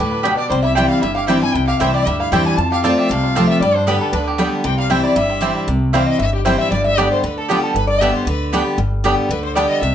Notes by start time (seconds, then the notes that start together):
Already playing: D2 G3 D4 B4
0.00 A2 G4
0.11 B3
0.23 B2 B3 D4 G4 D5 G5
0.37 G4 D5
0.50 C2 C3 G3 C5
0.63 E4 E5
0.75 E3 G3 C4 E4 C5 G5
0.88 C4 F5
1.02 G1 G2 E4 E5
1.15 G4 F5
1.27 E3 G3 C4 E4 C5 G5
1.41 E3 C4 E4 G#5
1.54 C2 C3 E4 G5
1.67 G4 F5
1.79 C2 E3 G3 C4 E4 C5 E5 G5
1.94 G4 D5
2.06 D2 G2 G3 E5
2.20 E4 F5
2.32 E2 E3 G3 C4 E4 G4 C5 G5
2.45 E4 G#5
2.58 F2 F4 A5
2.72 G4 F5
2.84 F3 A3 C4 F4 C5 D5 A5
2.98 G4 E5
3.10 C2 C3 A3 F5
3.23 F4
3.35 F3 A3 C4 F4 G4 C5 A5
3.47 F4 E5
3.60 G2 G3 D5
3.75 D4 C5
3.87 D3 G3 B3 G4 B4 D5 G5
4.01 B3 A4
4.12 D2 D3 D4 B4
4.27 G4
4.38 D3 G3 B3 G4 D5 G5
4.52 D3
4.64 C2 C3 E3 G5
4.78 G3 F5
4.90 E3 G3 C4 E4 C5 E5 G5
5.03 E4 D5
5.16 G1 G2 G3 E5
5.30 C4
5.41 E3 G3 C4 E4 G4 C5 G5
5.55 C4
5.68 C2 C3
5.93 E3 G3 C4 E4 C5 F5 G5
6.06 D#5
6.19 G1 G2 E5
6.33 G4
6.45 E3 G3 C4 E4 C5 G5
6.58 E5
6.71 G1 G2 D5
6.84 E5
6.97 D3 G3 B3 D4 G4 D5 G5
7.12 C5
7.23 D2 D3 B4
7.38 A4
7.49 D3 G3 B3 D4 F4 G4 D5 G5
7.63 A4
7.74 G1 G2 B4
7.87 D5
8.01 D3 G3 B3 D4 G4 D5 E5 G5
8.13 C5
8.25 D2 D3 B4
8.53 D3 G3 B3 D4 G4 D5 G5
8.78 G1 G2
9.04 D3 G3 B3 D4 G4 D5 G5
9.29 D2 D3 B4
9.43 C5
9.55 D3 G3 B3 D4 G4 D5 G5
9.69 D#5
9.81 C2 C3 E5